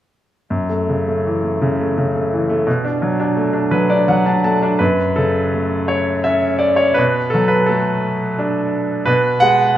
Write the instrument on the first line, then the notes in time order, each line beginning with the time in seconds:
grand piano
0.50 F#2
0.69 A3
0.89 C#3
1.08 A3
1.26 E3
1.44 A3
1.62 C#3
1.80 A3
1.98 C#3
2.15 A3
2.33 E3
2.50 A3
2.67 B2
2.85 D4
3.02 F#3
3.20 D4
3.37 A3
3.53 D4
3.71 F#3 B4
3.90 D4 D5
4.08 F#3 F#5
4.26 D4 A5
4.44 A3 A5
4.63 D4
4.79 F#2 B4
5.16 C#3 A4
5.54 A3
5.88 C#5
6.24 C#4 E5
6.59 D5
6.76 C#5
6.94 B2 B4
7.30 A4
7.34 F#3
7.48 B4
7.66 A3 A4
8.39 D4
9.06 B2 B4
9.40 G#3 F#5